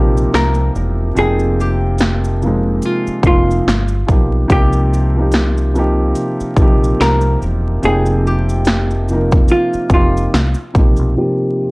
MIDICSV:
0, 0, Header, 1, 6, 480
1, 0, Start_track
1, 0, Key_signature, -3, "minor"
1, 0, Tempo, 833333
1, 669, Time_signature, 4, 2, 24, 8
1, 6745, End_track
2, 0, Start_track
2, 0, Title_t, "Hollow-body jazz guitar"
2, 0, Program_c, 0, 26
2, 202, Note_on_c, 0, 70, 72
2, 412, Note_off_c, 0, 70, 0
2, 683, Note_on_c, 0, 68, 95
2, 926, Note_off_c, 0, 68, 0
2, 926, Note_on_c, 0, 67, 72
2, 1644, Note_off_c, 0, 67, 0
2, 1644, Note_on_c, 0, 65, 81
2, 1853, Note_off_c, 0, 65, 0
2, 1884, Note_on_c, 0, 65, 72
2, 2573, Note_off_c, 0, 65, 0
2, 2604, Note_on_c, 0, 67, 95
2, 3671, Note_off_c, 0, 67, 0
2, 4041, Note_on_c, 0, 70, 76
2, 4252, Note_off_c, 0, 70, 0
2, 4523, Note_on_c, 0, 68, 90
2, 4763, Note_off_c, 0, 68, 0
2, 4763, Note_on_c, 0, 67, 67
2, 5453, Note_off_c, 0, 67, 0
2, 5480, Note_on_c, 0, 65, 78
2, 5692, Note_off_c, 0, 65, 0
2, 5723, Note_on_c, 0, 65, 67
2, 6413, Note_off_c, 0, 65, 0
2, 6441, Note_on_c, 0, 67, 85
2, 6745, Note_off_c, 0, 67, 0
2, 6745, End_track
3, 0, Start_track
3, 0, Title_t, "Felt piano"
3, 0, Program_c, 1, 0
3, 0, Control_c, 1, 64, 127
3, 0, Note_on_c, 1, 48, 87
3, 0, Note_on_c, 1, 53, 82
3, 0, Note_on_c, 1, 58, 78
3, 0, Note_on_c, 1, 63, 74
3, 0, Note_on_c, 1, 65, 71
3, 0, Note_on_c, 1, 67, 90
3, 0, Note_on_c, 1, 70, 98
3, 432, Note_off_c, 1, 48, 0
3, 436, Note_off_c, 1, 53, 0
3, 440, Note_off_c, 1, 58, 0
3, 443, Note_off_c, 1, 63, 0
3, 446, Note_off_c, 1, 67, 0
3, 663, Note_on_c, 1, 48, 95
3, 669, Note_on_c, 1, 53, 81
3, 676, Note_on_c, 1, 58, 80
3, 677, Control_c, 1, 64, 0
3, 680, Note_off_c, 1, 70, 0
3, 681, Note_off_c, 1, 65, 0
3, 683, Note_on_c, 1, 63, 77
3, 690, Note_on_c, 1, 79, 98
3, 767, Control_c, 1, 64, 127
3, 1151, Note_off_c, 1, 48, 0
3, 1155, Note_off_c, 1, 53, 0
3, 1158, Note_off_c, 1, 58, 0
3, 1162, Note_off_c, 1, 63, 0
3, 1165, Note_off_c, 1, 79, 0
3, 1392, Note_on_c, 1, 48, 73
3, 1398, Note_on_c, 1, 53, 59
3, 1405, Note_on_c, 1, 58, 70
3, 1413, Note_on_c, 1, 63, 61
3, 1420, Note_on_c, 1, 56, 81
3, 1726, Note_off_c, 1, 48, 0
3, 1729, Note_off_c, 1, 53, 0
3, 1732, Note_off_c, 1, 58, 0
3, 1736, Note_off_c, 1, 63, 0
3, 1740, Note_off_c, 1, 56, 0
3, 1865, Note_on_c, 1, 48, 78
3, 1873, Note_on_c, 1, 53, 63
3, 1879, Note_on_c, 1, 58, 66
3, 1886, Note_on_c, 1, 63, 66
3, 1894, Note_on_c, 1, 65, 73
3, 2107, Note_off_c, 1, 48, 0
3, 2111, Note_off_c, 1, 53, 0
3, 2114, Note_off_c, 1, 58, 0
3, 2116, Control_c, 1, 64, 0
3, 2118, Note_off_c, 1, 63, 0
3, 2121, Note_off_c, 1, 65, 0
3, 2228, Control_c, 1, 64, 127
3, 2343, Note_on_c, 1, 53, 66
3, 2349, Note_on_c, 1, 58, 62
3, 2357, Note_on_c, 1, 59, 57
3, 2364, Note_on_c, 1, 63, 60
3, 2370, Note_on_c, 1, 67, 71
3, 2519, Note_off_c, 1, 53, 0
3, 2522, Note_off_c, 1, 58, 0
3, 2526, Note_off_c, 1, 59, 0
3, 2529, Note_off_c, 1, 63, 0
3, 2532, Note_off_c, 1, 67, 0
3, 2580, Note_on_c, 1, 48, 101
3, 2588, Note_on_c, 1, 53, 82
3, 2595, Note_on_c, 1, 58, 90
3, 2597, Control_c, 1, 64, 0
3, 2601, Note_on_c, 1, 63, 80
3, 2608, Note_on_c, 1, 67, 106
3, 2704, Control_c, 1, 64, 127
3, 2827, Note_off_c, 1, 48, 0
3, 2831, Note_off_c, 1, 53, 0
3, 2835, Note_off_c, 1, 58, 0
3, 2838, Note_off_c, 1, 63, 0
3, 2841, Note_off_c, 1, 67, 0
3, 2968, Note_on_c, 1, 48, 64
3, 2974, Note_on_c, 1, 53, 65
3, 2981, Note_on_c, 1, 58, 58
3, 2987, Note_on_c, 1, 63, 63
3, 2994, Note_on_c, 1, 67, 76
3, 3209, Note_off_c, 1, 48, 0
3, 3212, Note_off_c, 1, 53, 0
3, 3216, Note_off_c, 1, 58, 0
3, 3219, Note_off_c, 1, 63, 0
3, 3222, Note_off_c, 1, 67, 0
3, 3306, Note_on_c, 1, 48, 83
3, 3314, Note_on_c, 1, 53, 80
3, 3320, Note_on_c, 1, 58, 82
3, 3326, Note_on_c, 1, 63, 83
3, 3333, Note_on_c, 1, 67, 101
3, 3643, Note_off_c, 1, 48, 0
3, 3646, Note_off_c, 1, 53, 0
3, 3650, Note_off_c, 1, 58, 0
3, 3653, Note_off_c, 1, 63, 0
3, 3656, Note_off_c, 1, 67, 0
3, 3786, Note_on_c, 1, 48, 89
3, 3793, Note_on_c, 1, 53, 82
3, 3799, Note_on_c, 1, 58, 81
3, 3806, Note_on_c, 1, 63, 83
3, 3812, Note_on_c, 1, 67, 103
3, 4273, Note_off_c, 1, 48, 0
3, 4276, Note_off_c, 1, 53, 0
3, 4279, Note_off_c, 1, 58, 0
3, 4283, Note_off_c, 1, 63, 0
3, 4286, Note_off_c, 1, 67, 0
3, 4506, Note_on_c, 1, 48, 94
3, 4513, Note_on_c, 1, 53, 78
3, 4517, Control_c, 1, 64, 0
3, 4520, Note_on_c, 1, 58, 80
3, 4526, Note_on_c, 1, 63, 84
3, 4533, Note_on_c, 1, 79, 99
3, 4601, Control_c, 1, 64, 127
3, 4993, Note_off_c, 1, 48, 0
3, 4997, Note_off_c, 1, 53, 0
3, 5000, Note_off_c, 1, 58, 0
3, 5003, Note_off_c, 1, 63, 0
3, 5006, Note_off_c, 1, 79, 0
3, 5237, Note_on_c, 1, 48, 70
3, 5244, Note_on_c, 1, 53, 65
3, 5250, Note_on_c, 1, 58, 64
3, 5257, Note_on_c, 1, 63, 70
3, 5264, Note_on_c, 1, 70, 83
3, 5568, Note_off_c, 1, 48, 0
3, 5572, Note_off_c, 1, 53, 0
3, 5575, Note_off_c, 1, 58, 0
3, 5578, Note_off_c, 1, 63, 0
3, 5582, Note_off_c, 1, 70, 0
3, 5697, Note_on_c, 1, 48, 68
3, 5704, Note_on_c, 1, 53, 63
3, 5710, Note_on_c, 1, 58, 66
3, 5717, Note_on_c, 1, 63, 65
3, 5725, Note_on_c, 1, 67, 82
3, 5943, Note_off_c, 1, 48, 0
3, 5947, Note_off_c, 1, 53, 0
3, 5950, Note_off_c, 1, 58, 0
3, 5953, Note_off_c, 1, 63, 0
3, 5956, Control_c, 1, 64, 0
3, 5957, Note_off_c, 1, 67, 0
3, 6042, Control_c, 1, 64, 127
3, 6184, Note_on_c, 1, 48, 64
3, 6191, Note_on_c, 1, 53, 58
3, 6197, Note_on_c, 1, 58, 58
3, 6204, Note_on_c, 1, 63, 57
3, 6210, Note_on_c, 1, 67, 73
3, 6360, Note_off_c, 1, 48, 0
3, 6363, Note_off_c, 1, 53, 0
3, 6366, Note_off_c, 1, 58, 0
3, 6369, Note_off_c, 1, 63, 0
3, 6373, Note_off_c, 1, 67, 0
3, 6426, Note_on_c, 1, 48, 89
3, 6432, Note_on_c, 1, 53, 78
3, 6437, Control_c, 1, 64, 0
3, 6438, Note_on_c, 1, 58, 81
3, 6445, Note_on_c, 1, 63, 78
3, 6452, Note_on_c, 1, 67, 87
3, 6545, Control_c, 1, 64, 127
3, 6670, Note_off_c, 1, 48, 0
3, 6673, Note_off_c, 1, 53, 0
3, 6676, Note_off_c, 1, 58, 0
3, 6680, Note_off_c, 1, 63, 0
3, 6683, Note_off_c, 1, 67, 0
3, 6745, End_track
4, 0, Start_track
4, 0, Title_t, "Fingered electric bass"
4, 0, Program_c, 2, 33
4, 0, Note_on_c, 2, 34, 89
4, 151, Note_off_c, 2, 34, 0
4, 194, Note_on_c, 2, 36, 83
4, 396, Note_off_c, 2, 36, 0
4, 434, Note_on_c, 2, 28, 94
4, 636, Note_off_c, 2, 28, 0
4, 674, Note_on_c, 2, 29, 102
4, 1608, Note_off_c, 2, 29, 0
4, 1864, Note_on_c, 2, 29, 87
4, 2071, Note_off_c, 2, 29, 0
4, 2114, Note_on_c, 2, 31, 95
4, 2317, Note_off_c, 2, 31, 0
4, 2355, Note_on_c, 2, 35, 84
4, 2557, Note_off_c, 2, 35, 0
4, 2593, Note_on_c, 2, 36, 99
4, 3528, Note_off_c, 2, 36, 0
4, 3784, Note_on_c, 2, 34, 90
4, 3991, Note_off_c, 2, 34, 0
4, 4035, Note_on_c, 2, 36, 85
4, 4237, Note_off_c, 2, 36, 0
4, 4274, Note_on_c, 2, 28, 77
4, 4477, Note_off_c, 2, 28, 0
4, 4515, Note_on_c, 2, 29, 97
4, 5449, Note_off_c, 2, 29, 0
4, 5704, Note_on_c, 2, 29, 91
4, 5911, Note_off_c, 2, 29, 0
4, 5954, Note_on_c, 2, 36, 92
4, 6069, Note_off_c, 2, 36, 0
4, 6194, Note_on_c, 2, 34, 77
4, 6309, Note_off_c, 2, 34, 0
4, 6330, Note_on_c, 2, 35, 74
4, 6416, Note_off_c, 2, 35, 0
4, 6745, End_track
5, 0, Start_track
5, 0, Title_t, "Muted fingered electric bass strokes"
5, 1770, Note_on_c, 9, 29, 46
5, 1828, Note_off_c, 9, 29, 0
5, 3691, Note_on_c, 9, 29, 46
5, 3749, Note_off_c, 9, 29, 0
5, 5612, Note_on_c, 9, 29, 45
5, 5670, Note_off_c, 9, 29, 0
5, 6745, End_track
6, 0, Start_track
6, 0, Title_t, "Drums"
6, 100, Note_on_c, 9, 82, 51
6, 157, Note_off_c, 9, 82, 0
6, 197, Note_on_c, 9, 38, 110
6, 204, Note_on_c, 9, 42, 67
6, 204, Note_on_c, 9, 82, 69
6, 254, Note_off_c, 9, 38, 0
6, 262, Note_off_c, 9, 42, 0
6, 262, Note_off_c, 9, 82, 0
6, 314, Note_on_c, 9, 82, 43
6, 371, Note_off_c, 9, 82, 0
6, 435, Note_on_c, 9, 82, 41
6, 492, Note_off_c, 9, 82, 0
6, 672, Note_on_c, 9, 42, 59
6, 672, Note_on_c, 9, 82, 56
6, 730, Note_off_c, 9, 42, 0
6, 730, Note_off_c, 9, 82, 0
6, 803, Note_on_c, 9, 82, 46
6, 860, Note_off_c, 9, 82, 0
6, 923, Note_on_c, 9, 82, 53
6, 981, Note_off_c, 9, 82, 0
6, 1143, Note_on_c, 9, 42, 64
6, 1143, Note_on_c, 9, 82, 64
6, 1155, Note_on_c, 9, 38, 98
6, 1201, Note_off_c, 9, 42, 0
6, 1201, Note_off_c, 9, 82, 0
6, 1213, Note_off_c, 9, 38, 0
6, 1292, Note_on_c, 9, 82, 47
6, 1350, Note_off_c, 9, 82, 0
6, 1395, Note_on_c, 9, 82, 43
6, 1453, Note_off_c, 9, 82, 0
6, 1625, Note_on_c, 9, 42, 60
6, 1625, Note_on_c, 9, 82, 61
6, 1683, Note_off_c, 9, 42, 0
6, 1683, Note_off_c, 9, 82, 0
6, 1769, Note_on_c, 9, 82, 42
6, 1827, Note_off_c, 9, 82, 0
6, 1861, Note_on_c, 9, 36, 95
6, 1864, Note_on_c, 9, 82, 46
6, 1919, Note_off_c, 9, 36, 0
6, 1922, Note_off_c, 9, 82, 0
6, 2021, Note_on_c, 9, 82, 49
6, 2079, Note_off_c, 9, 82, 0
6, 2119, Note_on_c, 9, 38, 108
6, 2126, Note_on_c, 9, 42, 66
6, 2126, Note_on_c, 9, 82, 66
6, 2176, Note_off_c, 9, 38, 0
6, 2184, Note_off_c, 9, 42, 0
6, 2184, Note_off_c, 9, 82, 0
6, 2236, Note_on_c, 9, 82, 43
6, 2293, Note_off_c, 9, 82, 0
6, 2353, Note_on_c, 9, 36, 79
6, 2356, Note_on_c, 9, 82, 36
6, 2410, Note_off_c, 9, 36, 0
6, 2414, Note_off_c, 9, 82, 0
6, 2591, Note_on_c, 9, 36, 94
6, 2592, Note_on_c, 9, 42, 58
6, 2592, Note_on_c, 9, 82, 59
6, 2648, Note_off_c, 9, 36, 0
6, 2649, Note_off_c, 9, 42, 0
6, 2649, Note_off_c, 9, 82, 0
6, 2723, Note_on_c, 9, 82, 47
6, 2780, Note_off_c, 9, 82, 0
6, 2843, Note_on_c, 9, 82, 54
6, 2901, Note_off_c, 9, 82, 0
6, 3063, Note_on_c, 9, 42, 61
6, 3063, Note_on_c, 9, 82, 65
6, 3075, Note_on_c, 9, 38, 99
6, 3121, Note_off_c, 9, 42, 0
6, 3121, Note_off_c, 9, 82, 0
6, 3133, Note_off_c, 9, 38, 0
6, 3211, Note_on_c, 9, 82, 49
6, 3269, Note_off_c, 9, 82, 0
6, 3315, Note_on_c, 9, 82, 45
6, 3372, Note_off_c, 9, 82, 0
6, 3544, Note_on_c, 9, 42, 62
6, 3544, Note_on_c, 9, 82, 61
6, 3602, Note_off_c, 9, 42, 0
6, 3602, Note_off_c, 9, 82, 0
6, 3688, Note_on_c, 9, 82, 40
6, 3745, Note_off_c, 9, 82, 0
6, 3781, Note_on_c, 9, 36, 90
6, 3784, Note_on_c, 9, 82, 43
6, 3839, Note_off_c, 9, 36, 0
6, 3842, Note_off_c, 9, 82, 0
6, 3939, Note_on_c, 9, 82, 51
6, 3997, Note_off_c, 9, 82, 0
6, 4036, Note_on_c, 9, 38, 108
6, 4043, Note_on_c, 9, 42, 66
6, 4043, Note_on_c, 9, 82, 69
6, 4094, Note_off_c, 9, 38, 0
6, 4101, Note_off_c, 9, 42, 0
6, 4101, Note_off_c, 9, 82, 0
6, 4153, Note_on_c, 9, 82, 42
6, 4211, Note_off_c, 9, 82, 0
6, 4274, Note_on_c, 9, 82, 38
6, 4332, Note_off_c, 9, 82, 0
6, 4510, Note_on_c, 9, 42, 57
6, 4510, Note_on_c, 9, 82, 56
6, 4568, Note_off_c, 9, 42, 0
6, 4568, Note_off_c, 9, 82, 0
6, 4642, Note_on_c, 9, 82, 45
6, 4699, Note_off_c, 9, 82, 0
6, 4762, Note_on_c, 9, 82, 50
6, 4820, Note_off_c, 9, 82, 0
6, 4892, Note_on_c, 9, 82, 56
6, 4950, Note_off_c, 9, 82, 0
6, 4982, Note_on_c, 9, 42, 64
6, 4982, Note_on_c, 9, 82, 62
6, 4994, Note_on_c, 9, 38, 113
6, 5040, Note_off_c, 9, 42, 0
6, 5040, Note_off_c, 9, 82, 0
6, 5052, Note_off_c, 9, 38, 0
6, 5130, Note_on_c, 9, 82, 44
6, 5188, Note_off_c, 9, 82, 0
6, 5233, Note_on_c, 9, 82, 45
6, 5291, Note_off_c, 9, 82, 0
6, 5366, Note_on_c, 9, 82, 42
6, 5370, Note_on_c, 9, 36, 95
6, 5424, Note_off_c, 9, 82, 0
6, 5428, Note_off_c, 9, 36, 0
6, 5462, Note_on_c, 9, 42, 64
6, 5462, Note_on_c, 9, 82, 61
6, 5520, Note_off_c, 9, 42, 0
6, 5520, Note_off_c, 9, 82, 0
6, 5607, Note_on_c, 9, 82, 40
6, 5664, Note_off_c, 9, 82, 0
6, 5701, Note_on_c, 9, 36, 91
6, 5703, Note_on_c, 9, 82, 46
6, 5758, Note_off_c, 9, 36, 0
6, 5760, Note_off_c, 9, 82, 0
6, 5859, Note_on_c, 9, 82, 53
6, 5916, Note_off_c, 9, 82, 0
6, 5956, Note_on_c, 9, 38, 108
6, 5963, Note_on_c, 9, 42, 67
6, 5963, Note_on_c, 9, 82, 72
6, 6013, Note_off_c, 9, 38, 0
6, 6021, Note_off_c, 9, 42, 0
6, 6021, Note_off_c, 9, 82, 0
6, 6073, Note_on_c, 9, 82, 45
6, 6130, Note_off_c, 9, 82, 0
6, 6191, Note_on_c, 9, 36, 87
6, 6194, Note_on_c, 9, 82, 40
6, 6249, Note_off_c, 9, 36, 0
6, 6251, Note_off_c, 9, 82, 0
6, 6316, Note_on_c, 9, 82, 41
6, 6374, Note_off_c, 9, 82, 0
6, 6745, End_track
0, 0, End_of_file